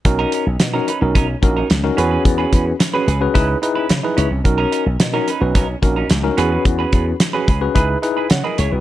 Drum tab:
HH |xxxxxxxx|xxxxxxxx|xxxxxxxx|xxxxxxxx|
SD |--o---o-|--o---o-|--o---o-|--o---o-|
BD |o---oo--|oo--o---|o---oo--|oo-oo---|